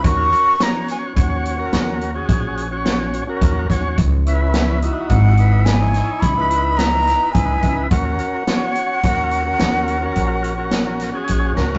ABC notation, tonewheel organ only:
X:1
M:7/4
L:1/16
Q:1/4=107
K:D#phr
V:1 name="Tonewheel organ"
[CFA]4 [CFc]4 [CFc]3 [CFA]4 [CFG]4 [CFc]4 [CFA]3 [CFc]2 | z2 [CEB]4 [DEF]4 [DEB]3 [DEc]4 [DEB]4 [DEB]3 [DEB]4 | [CFA]4 [CFc]4 [CFA]3 [CFA]4 [CFA]4 [CFA]4 [CFG]3 [CFA]2 |]